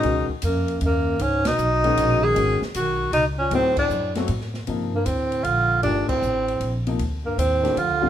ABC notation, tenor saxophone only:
X:1
M:3/4
L:1/8
Q:"Swing" 1/4=155
K:G#dor
V:1 name="Tenor saxophone"
D z A,2 A,2 | C D4 G- | G z F2 D C | =C =D2 z3 |
[K:Gm] z B, C2 F2 | D C4 z | z B, C2 F2 |]